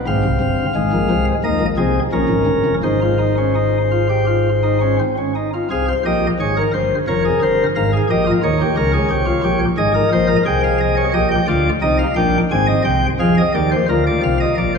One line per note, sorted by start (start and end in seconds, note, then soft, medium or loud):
0.07 0.22 G#1 medium
0.07 0.22 G#2 medium
0.07 0.66 C4 medium
0.07 1.25 F5 medium
0.24 0.39 C2 medium
0.24 0.39 C3 medium
0.40 0.62 G1 medium
0.40 0.62 G2 medium
0.75 0.90 G#1 medium
0.75 0.90 G#2 medium
0.75 1.34 G#3 medium
0.92 1.07 A#1 medium
0.92 1.08 A#2 medium
1.10 1.31 C2 medium
1.10 1.31 C3 medium
1.44 1.59 D#2 medium
1.44 1.59 D#3 medium
1.44 1.66 A#3 medium
1.44 1.66 D#5 medium
1.61 1.76 A#1 medium
1.61 1.76 A#2 medium
1.77 1.99 C2 medium
1.77 1.99 C3 medium
1.77 2.00 C4 medium
1.77 1.99 G#4 medium
2.13 2.28 A#1 medium
2.13 2.28 A#2 medium
2.13 2.74 C#4 medium
2.13 2.74 A#4 medium
2.29 2.45 G#1 medium
2.29 2.45 G#2 medium
2.46 2.63 G1 medium
2.46 2.63 G2 medium
2.65 2.81 F1 medium
2.65 2.81 F2 medium
2.83 4.99 G#1 medium
2.83 4.99 G#2 medium
2.83 2.99 D#4 medium
2.83 4.99 C5 medium
3.02 3.18 F4 medium
3.19 3.35 D#4 medium
3.38 3.54 C#4 medium
3.55 3.78 D#4 medium
3.92 4.07 F4 medium
4.09 4.25 G4 medium
4.27 4.49 F4 medium
4.63 4.79 D#4 medium
4.81 4.97 C#4 medium
5.00 5.15 C4 medium
5.18 5.33 C#4 medium
5.35 5.50 D#4 medium
5.54 5.68 F4 medium
5.71 5.92 C2 medium
5.71 5.92 C3 medium
5.71 5.85 G#4 medium
5.71 5.92 F5 medium
5.88 6.03 C5 medium
6.05 6.27 A#1 medium
6.05 6.27 A#2 medium
6.05 6.27 G4 medium
6.05 6.27 D#5 medium
6.40 6.61 G#1 medium
6.40 6.61 G#2 medium
6.40 6.55 G#4 medium
6.40 6.61 C#5 medium
6.57 6.71 A#4 medium
6.74 6.95 G1 medium
6.74 6.95 G2 medium
6.74 6.95 C5 medium
7.08 7.29 F1 medium
7.08 7.29 F2 medium
7.08 7.66 A#4 medium
7.08 7.22 C#5 medium
7.25 7.39 G#4 medium
7.42 7.63 G1 medium
7.42 7.63 G2 medium
7.42 7.64 C5 medium
7.76 7.97 G#1 medium
7.76 7.97 G#2 medium
7.76 7.90 A#4 medium
7.76 7.97 F5 medium
7.93 8.07 G#4 medium
8.10 8.31 A#1 medium
8.10 8.31 A#2 medium
8.10 8.24 G4 medium
8.10 8.31 D#5 medium
8.27 8.41 F4 medium
8.43 8.64 D#2 medium
8.43 8.64 D#3 medium
8.43 8.58 D#4 medium
8.43 9.59 C#5 medium
8.61 8.75 G4 medium
8.77 8.98 C#2 medium
8.77 8.98 C#3 medium
8.77 8.91 A#4 medium
8.94 9.08 G#4 medium
9.10 9.31 C2 medium
9.10 9.31 C3 medium
9.10 9.25 G4 medium
9.26 9.41 F4 medium
9.43 9.65 A#1 medium
9.43 9.64 A#2 medium
9.43 9.65 G4 medium
9.77 9.99 G#1 medium
9.77 9.99 G#2 medium
9.77 9.92 G#4 medium
9.77 10.36 D#5 medium
9.94 10.09 A#4 medium
10.12 10.33 A#1 medium
10.12 10.33 A#2 medium
10.12 10.27 C5 medium
10.28 10.43 A#4 medium
10.45 11.04 C2 medium
10.45 11.04 C3 medium
10.45 11.04 G#4 medium
10.45 10.61 G5 medium
10.64 10.78 F5 medium
10.80 10.95 D#5 medium
10.97 11.12 C#5 medium
11.14 11.35 A#1 medium
11.14 11.35 A#2 medium
11.14 11.35 G4 medium
11.14 11.28 D#5 loud
11.31 11.46 G5 medium
11.47 11.69 D2 medium
11.47 11.69 D3 medium
11.47 11.69 F4 medium
11.47 11.69 D5 medium
11.82 12.03 C2 medium
11.82 12.03 C3 medium
11.82 12.03 D#4 medium
11.82 11.97 D#5 medium
11.99 12.14 F5 medium
12.16 12.38 A#1 medium
12.16 12.38 A#2 medium
12.16 12.38 D4 medium
12.16 12.37 G5 medium
12.51 12.72 G#1 medium
12.51 12.72 G#2 medium
12.51 13.10 C4 medium
12.51 12.66 G#5 loud
12.67 12.82 D#5 medium
12.85 13.06 C2 medium
12.85 13.06 C3 medium
12.85 13.06 G5 medium
13.20 13.41 F2 medium
13.20 13.41 F3 medium
13.20 13.41 G#4 medium
13.20 13.34 F5 medium
13.38 13.52 D#5 medium
13.54 13.76 D#2 medium
13.54 13.76 D#3 medium
13.54 13.76 G4 medium
13.54 13.69 D5 medium
13.72 13.86 C5 medium
13.89 14.10 D2 medium
13.89 14.10 D3 medium
13.89 14.78 F4 medium
13.89 14.04 A#4 medium
14.07 14.21 D5 medium
14.23 14.44 C2 medium
14.23 14.44 C3 medium
14.23 14.38 F5 medium
14.40 14.55 D#5 medium
14.58 14.78 A#1 medium
14.58 14.78 A#2 medium
14.58 14.72 D5 medium
14.75 14.78 C5 medium